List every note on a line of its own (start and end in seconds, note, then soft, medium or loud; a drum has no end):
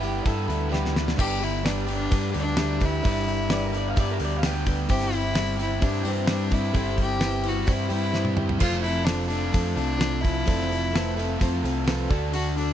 0.00 0.20 G1 loud
0.00 0.26 B3 medium
0.00 0.24 D4 medium
0.00 0.12 E4 medium
0.00 0.24 E4 medium
0.00 0.12 G4 medium
0.00 0.25 G4 medium
0.00 0.12 B4 medium
0.00 0.26 B4 medium
0.00 0.12 E5 loud
0.00 0.66 G5 loud
0.00 open hi-hat medium
0.04 0.23 G3 medium
0.22 0.46 G2 medium
0.22 0.68 G3 medium
0.22 0.50 D4 medium
0.22 0.58 E4 medium
0.22 0.58 G4 medium
0.22 0.58 B4 medium
0.22 0.58 D5 medium
0.26 0.48 B3 medium
0.26 0.48 E4 medium
0.26 0.70 A4 medium
0.26 0.46 B4 loud
0.26 kick loud
0.26 open hi-hat medium
0.47 1.13 D2 loud
0.47 0.71 B3 medium
0.47 0.70 D4 medium
0.47 0.71 E4 medium
0.47 0.72 B4 medium
0.47 open hi-hat medium
0.69 1.15 G3 medium
0.69 0.94 B3 loud
0.69 0.96 D4 loud
0.69 1.06 E4 medium
0.69 0.95 E4 medium
0.69 1.06 G4 medium
0.69 0.94 G4 medium
0.69 1.06 B4 medium
0.69 0.93 B4 loud
0.69 1.06 D5 loud
0.74 snare medium
0.86 snare medium
0.94 1.16 B3 medium
0.94 1.17 D4 medium
0.94 1.17 E4 medium
0.94 1.16 B4 medium
0.94 snare loud
1.08 snare loud
1.16 2.07 G1 loud
1.16 1.89 G2 medium
1.16 1.64 D3 loud
1.16 1.43 G3 loud
1.16 1.42 B3 loud
1.16 1.52 D4 medium
1.16 1.42 D4 loud
1.16 1.52 G4 medium
1.16 1.45 G4 loud
1.16 1.52 B4 medium
1.16 1.38 B4 medium
1.16 1.52 D5 loud
1.16 kick loud
1.16 crash loud
1.20 1.41 G4 loud
1.39 1.64 B3 medium
1.39 1.65 D4 medium
1.39 1.66 G4 medium
1.39 1.63 B4 medium
1.39 open hi-hat medium
1.44 1.62 G3 medium
1.44 1.69 E4 loud
1.63 1.88 G3 medium
1.63 1.87 B3 medium
1.63 1.99 D4 medium
1.63 1.86 D4 medium
1.63 1.99 G4 medium
1.63 1.86 G4 medium
1.63 1.99 B4 medium
1.63 1.86 B4 medium
1.63 1.99 D5 medium
1.63 snare loud
1.63 open hi-hat medium
1.68 1.89 D4 medium
1.86 2.55 G2 medium
1.86 2.34 D3 medium
1.86 2.09 G3 medium
1.86 2.09 B3 medium
1.86 2.10 D4 medium
1.86 2.12 G4 loud
1.86 2.10 B4 medium
1.86 open hi-hat medium
1.92 2.33 D4 loud
2.09 2.32 G2 medium
2.09 2.34 G3 medium
2.09 2.32 B3 medium
2.09 2.45 D4 medium
2.09 2.31 D4 medium
2.09 2.45 G4 medium
2.09 2.31 G4 medium
2.09 2.46 B4 medium
2.09 2.33 B4 medium
2.09 2.46 D5 medium
2.09 kick loud
2.09 open hi-hat medium
2.32 3.00 D2 loud
2.32 2.56 G3 medium
2.32 2.56 B3 medium
2.32 2.57 D4 medium
2.32 2.59 G4 medium
2.32 2.57 B4 medium
2.32 open hi-hat medium
2.36 2.58 D4 medium
2.36 2.87 D4 loud
2.55 3.02 G2 loud
2.55 3.02 D3 loud
2.55 2.82 G3 loud
2.55 2.81 B3 loud
2.55 2.92 D4 medium
2.55 2.80 D4 loud
2.55 2.92 G4 medium
2.55 2.78 G4 loud
2.55 2.92 B4 medium
2.55 2.93 E5 medium
2.55 snare loud
2.55 open hi-hat medium
2.60 2.79 B4 medium
2.79 3.03 G3 medium
2.79 3.03 B3 medium
2.79 3.04 D4 medium
2.79 3.06 G4 medium
2.79 3.03 B4 medium
2.79 kick loud
2.79 open hi-hat medium
2.85 4.22 E4 loud
3.02 3.93 G1 loud
3.02 3.76 G2 loud
3.02 3.50 D3 loud
3.02 3.29 G3 loud
3.02 3.27 B3 loud
3.02 3.38 D4 medium
3.02 3.26 D4 loud
3.02 3.38 G4 medium
3.02 3.26 G4 loud
3.02 3.38 B4 medium
3.02 3.25 B4 medium
3.02 3.38 E5 medium
3.02 kick loud
3.02 open hi-hat medium
3.26 3.49 G3 medium
3.26 3.50 B3 medium
3.26 3.51 D4 medium
3.26 3.53 G4 medium
3.26 3.50 B4 medium
3.26 open hi-hat medium
3.50 3.74 G3 medium
3.50 3.72 B3 medium
3.50 3.85 D4 loud
3.50 3.72 D4 medium
3.50 3.86 G4 medium
3.50 3.71 G4 medium
3.50 3.85 B4 medium
3.50 3.71 B4 medium
3.50 3.85 D5 loud
3.50 3.62 D5 loud
3.50 snare loud
3.50 open hi-hat medium
3.65 3.74 A#4 medium
3.72 4.20 D3 medium
3.72 3.95 G3 loud
3.72 3.95 B3 medium
3.72 3.96 D4 medium
3.72 3.98 G4 loud
3.72 3.96 B4 medium
3.72 open hi-hat medium
3.76 4.42 G2 medium
3.76 3.88 D5 medium
3.88 3.98 F5 medium
3.95 4.18 G2 loud
3.95 4.22 G3 medium
3.95 4.20 B3 medium
3.95 4.32 D4 medium
3.95 4.19 D4 medium
3.95 4.32 G4 medium
3.95 4.19 G4 medium
3.95 4.32 B4 medium
3.95 4.19 B4 loud
3.95 4.32 E5 medium
3.95 kick loud
3.95 open hi-hat medium
4.00 4.09 D5 loud
4.11 4.21 A#4 medium
4.19 4.85 D2 loud
4.19 4.43 G3 medium
4.19 4.43 B3 medium
4.19 4.44 D4 medium
4.19 4.45 G4 medium
4.19 4.43 B4 medium
4.19 open hi-hat medium
4.25 4.37 D5 medium
4.37 4.47 F5 medium
4.42 7.92 G2 medium
4.42 4.88 D3 loud
4.42 4.69 G3 medium
4.42 4.67 B3 loud
4.42 4.78 D4 loud
4.42 4.66 D4 loud
4.42 4.78 G4 medium
4.42 4.66 G4 loud
4.42 4.78 B4 medium
4.42 4.65 B4 medium
4.42 4.78 D5 loud
4.42 snare loud
4.42 open hi-hat loud
4.47 4.78 G5 loud
4.66 4.89 G3 medium
4.66 4.89 B3 medium
4.66 4.89 D4 medium
4.66 4.93 G4 medium
4.66 4.89 B4 medium
4.66 kick loud
4.66 open hi-hat medium
4.89 5.79 G1 medium
4.89 5.34 G3 loud
4.89 5.24 C4 medium
4.89 5.15 C4 loud
4.89 5.25 E4 medium
4.89 5.13 E4 loud
4.89 5.17 G4 loud
4.89 5.25 G4 medium
4.89 5.25 C5 medium
4.89 5.10 C5 medium
4.89 kick loud
4.89 open hi-hat loud
4.93 5.12 G4 loud
5.00 snare soft
5.11 5.37 E4 medium
5.11 5.37 G4 medium
5.11 5.35 C5 medium
5.11 open hi-hat medium
5.15 5.36 C4 medium
5.15 5.60 E4 loud
5.35 5.60 G3 medium
5.35 5.71 C4 medium
5.35 5.59 C4 medium
5.35 5.71 E4 medium
5.35 5.58 E4 medium
5.35 5.71 G4 medium
5.35 5.56 G4 medium
5.35 5.71 C5 medium
5.35 snare loud
5.35 open hi-hat medium
5.39 5.60 C5 medium
5.57 5.78 G3 medium
5.57 5.81 C4 medium
5.57 5.81 E4 medium
5.57 5.82 G4 loud
5.57 open hi-hat medium
5.62 5.84 E4 loud
5.62 5.82 E4 medium
5.62 5.83 C5 medium
5.80 6.03 G2 medium
5.80 6.25 G3 medium
5.80 6.17 C4 medium
5.80 6.06 C4 medium
5.80 6.10 D4 loud
5.80 6.17 E4 medium
5.80 6.04 E4 medium
5.80 6.17 G4 medium
5.80 6.02 G4 medium
5.80 6.17 C5 medium
5.80 kick loud
5.80 open hi-hat medium
5.84 6.04 C5 medium
6.03 6.71 G2 loud
6.03 6.27 C4 medium
6.03 6.27 E4 medium
6.03 6.28 G4 medium
6.03 6.28 C5 medium
6.03 open hi-hat medium
6.08 6.32 C4 loud
6.26 6.72 G3 loud
6.26 6.63 C4 medium
6.26 6.52 C4 loud
6.26 6.63 E4 medium
6.26 6.50 E4 loud
6.26 6.63 G4 medium
6.26 6.48 G4 loud
6.26 6.64 C5 medium
6.26 snare loud
6.26 open hi-hat medium
6.30 6.55 D4 medium
6.30 6.51 C5 medium
6.49 6.74 C4 medium
6.49 6.74 E4 medium
6.49 6.75 G4 medium
6.49 6.75 C5 medium
6.49 kick loud
6.49 open hi-hat medium
6.54 6.99 E4 loud
6.73 7.63 G1 loud
6.73 7.18 G3 loud
6.73 7.09 C4 medium
6.73 6.99 C4 loud
6.73 7.09 E4 medium
6.73 6.97 E4 loud
6.73 7.09 G4 medium
6.73 6.95 G4 loud
6.73 7.09 A4 medium
6.73 6.95 C5 medium
6.73 kick loud
6.73 open hi-hat medium
6.96 7.20 C4 medium
6.96 7.20 E4 medium
6.96 7.21 G4 medium
6.96 7.21 C5 medium
6.96 kick medium
6.96 open hi-hat medium
7.02 7.50 G4 loud
7.19 7.46 G3 medium
7.19 7.56 C4 medium
7.19 7.45 C4 medium
7.19 7.56 E4 medium
7.19 7.43 E4 medium
7.19 7.56 G4 medium
7.19 7.42 G4 medium
7.19 7.56 B4 medium
7.19 7.43 C5 medium
7.19 snare loud
7.19 open hi-hat medium
7.44 7.65 G3 medium
7.44 7.68 C4 medium
7.44 7.67 E4 medium
7.44 7.69 G4 loud
7.44 7.67 C5 medium
7.44 open hi-hat medium
7.49 7.74 F#4 loud
7.66 7.89 G2 medium
7.66 8.11 G3 medium
7.66 8.03 C4 medium
7.66 7.92 C4 medium
7.66 8.02 E4 medium
7.66 7.89 E4 medium
7.66 8.03 G4 medium
7.66 7.88 G4 medium
7.66 7.89 C5 medium
7.66 8.03 D5 medium
7.66 kick loud
7.66 open hi-hat medium
7.72 7.93 E4 medium
7.89 8.57 G2 loud
7.89 8.13 C4 medium
7.89 8.13 E4 medium
7.89 8.14 G4 medium
7.89 8.13 C5 medium
7.89 open hi-hat medium
7.94 8.36 E4 loud
8.12 8.58 G3 medium
8.12 8.49 C4 medium
8.12 8.39 C4 loud
8.12 8.49 E4 medium
8.12 8.36 E4 loud
8.12 8.49 G4 medium
8.12 8.34 G4 loud
8.12 8.49 C5 medium
8.12 8.37 C5 medium
8.12 snare medium
8.25 high tom medium
8.36 8.60 C4 medium
8.36 8.59 E4 medium
8.36 8.58 G4 medium
8.36 8.61 C5 medium
8.36 mid tom loud
8.49 floor tom loud
8.58 9.50 F1 loud
8.58 9.31 F3 loud
8.58 9.05 A3 loud
8.58 8.95 C4 medium
8.58 8.85 C4 loud
8.58 8.95 F4 medium
8.58 8.81 F4 loud
8.58 8.83 F4 loud
8.58 8.96 A4 medium
8.58 8.96 C5 loud
8.58 kick loud
8.58 crash loud
8.62 8.81 A4 loud
8.72 snare soft
8.82 9.06 C4 medium
8.82 9.06 E4 loud
8.82 9.07 F4 medium
8.82 9.08 A4 medium
8.82 open hi-hat medium
9.05 9.30 A3 medium
9.05 9.42 C4 medium
9.05 9.28 C4 medium
9.05 9.26 D4 loud
9.05 9.42 F4 medium
9.05 9.28 F4 medium
9.05 9.42 A4 medium
9.05 9.42 C5 medium
9.05 snare loud
9.05 open hi-hat loud
9.09 9.27 A4 medium
9.27 9.51 A3 medium
9.27 9.52 C4 medium
9.27 9.72 D4 loud
9.27 9.52 F4 medium
9.27 9.54 A4 loud
9.27 open hi-hat medium
9.31 9.77 F3 medium
9.51 9.75 F2 medium
9.51 9.76 F3 medium
9.51 9.99 A3 medium
9.51 9.89 C4 medium
9.51 9.78 C4 medium
9.51 9.89 F4 medium
9.51 9.77 F4 medium
9.51 9.88 A4 medium
9.51 9.76 A4 medium
9.51 9.89 C5 medium
9.51 kick loud
9.51 open hi-hat loud
9.73 10.42 C2 loud
9.73 10.22 D4 loud
9.73 10.01 A4 medium
9.73 open hi-hat medium
9.79 9.99 C4 medium
9.79 10.00 F4 medium
9.98 10.44 F3 loud
9.98 10.47 A3 loud
9.98 10.35 C4 medium
9.98 10.24 C4 loud
9.98 10.35 F4 medium
9.98 10.22 F4 loud
9.98 10.35 A4 medium
9.98 10.22 A4 loud
9.98 10.35 C5 medium
9.98 snare loud
9.98 open hi-hat medium
10.21 11.62 E4 loud
10.21 10.48 F4 medium
10.21 10.49 A4 medium
10.21 kick loud
10.21 open hi-hat medium
10.25 10.47 C4 medium
10.46 11.36 F1 loud
10.46 10.93 F3 loud
10.46 10.92 A3 loud
10.46 10.82 C4 medium
10.46 10.72 C4 loud
10.46 10.71 F4 loud
10.46 10.82 A4 medium
10.46 10.69 A4 loud
10.46 10.82 D5 medium
10.46 kick loud
10.46 open hi-hat medium
10.61 snare soft
10.70 10.93 C4 medium
10.70 10.94 F4 medium
10.70 10.96 A4 medium
10.70 open hi-hat medium
10.93 11.19 A3 medium
10.93 11.29 C4 loud
10.93 11.18 C4 medium
10.93 11.16 F4 medium
10.93 11.29 A4 medium
10.93 11.16 A4 medium
10.93 11.30 B4 loud
10.93 snare loud
10.93 open hi-hat medium
11.17 11.65 F3 medium
11.17 11.37 A3 medium
11.17 11.39 C4 loud
11.17 11.40 F4 medium
11.17 11.41 A4 medium
11.17 11.39 E5 medium
11.17 open hi-hat medium
11.38 11.62 F2 medium
11.38 11.63 F3 medium
11.38 11.85 A3 medium
11.38 11.65 C4 medium
11.38 11.75 C4 medium
11.38 11.76 F4 medium
11.38 11.64 F4 medium
11.38 11.76 A4 medium
11.38 11.62 A4 loud
11.38 11.76 C5 loud
11.38 11.63 F5 medium
11.38 kick loud
11.38 open hi-hat medium
11.63 12.06 C2 loud
11.63 11.86 C4 medium
11.63 11.87 F4 medium
11.63 11.87 A4 medium
11.63 11.85 G5 medium
11.63 open hi-hat medium
11.85 12.07 F3 loud
11.85 12.08 A3 loud
11.85 12.08 C4 loud
11.85 12.10 C4 medium
11.85 12.09 F4 loud
11.85 12.10 F4 medium
11.85 12.09 A4 loud
11.85 12.08 A4 medium
11.85 12.10 B4 loud
11.85 12.30 A5 medium
11.85 snare loud
11.85 open hi-hat medium
12.09 12.73 D2 loud
12.09 12.31 D3 medium
12.09 12.65 D4 loud
12.09 12.33 D4 medium
12.09 12.66 F#4 medium
12.09 12.34 F#4 medium
12.09 12.65 A4 loud
12.09 12.35 A4 loud
12.09 12.66 D5 loud
12.09 kick loud
12.09 open hi-hat medium
12.32 12.73 D3 loud
12.32 12.57 A3 medium
12.32 12.59 D4 loud
12.32 12.54 F#4 medium
12.32 12.57 F#4 loud
12.32 12.55 A4 loud
12.32 open hi-hat loud
12.56 12.73 D4 loud
12.56 12.73 D4 medium
12.56 12.73 F#4 medium
12.56 12.73 A4 medium
12.56 open hi-hat medium